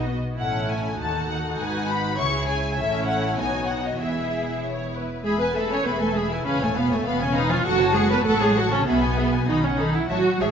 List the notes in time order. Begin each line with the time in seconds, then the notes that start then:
Already playing: B1 B2 F#4 D#5
0.08 B3
0.37 A1 A2 C#4 E4 A4 C#5 F#5
0.69 G#5
0.98 D#2 D#4 F#4 A4 F#5 A5
1.29 F#5
1.59 G#1 G#2 B4 G#5
1.89 B5
2.18 C#2 C#3 E4 G#4 C#5 C#6
2.47 G#5
2.77 A1 A2 C#4 E4 A4 C#5 E5
3.07 F#5
3.38 B1 B2 B3 D#4 F#4 G#5
3.67 F#5
3.84 D#5
3.99 E1 E2 B3 E4 G#4 E5
4.63 C#5
4.94 B4
5.24 E1 G#3 G#4 E5 B5
5.39 B3 B4 G#5
5.54 A3 G#4 A4 E5 B5
5.70 C#4 B4 C#5 G#5
5.84 E1 B3 G#4 B4 E5 B5
5.99 A3 A4 B4 G#5
6.15 G#3 G#4 E5 B5
6.30 E3 E4 B4 G#5
6.44 E1 C#3 C#4 B4 F5 B5
6.59 A2 A3 C#5 G#5
6.75 B2 B3 B4 F5 B5
6.90 A2 A3 C#5 G#5
7.04 E1 B2 B3 B4 F5 B5
7.19 C#3 C#4 C#5 G#5
7.34 D#3 D#4 B4 F5 B5
7.49 F3 F4 C#5 G#5
7.63 F#1 F#3 F#4 A4 F#5 C#6
7.79 C#5 A5
7.94 G#3 G#4 A4 F#5 C#6
8.09 B3 B4 C#5 A5
8.24 A1 A3 A4 F#5 C#6
8.38 G#3 G#4 C#5 A5
8.54 F#3 F#4 A4 F#5 C#6
8.69 C#3 C#4 C#5 A5
8.84 B1 B2 B3 G#4 E5 B5
9.01 B4 G#5
9.17 G#4 E5 B5
9.32 B4 G#5
9.47 B1 D#3 D#4 F#4 B5
9.62 C#3 C#4 F#5
9.77 D#3 D#4 A4 B5
9.93 E3 E4 F#5
10.08 A1 F#3 F#4 C#5 E5 A5
10.39 A1 G#3 G#4 C#5 E5 A5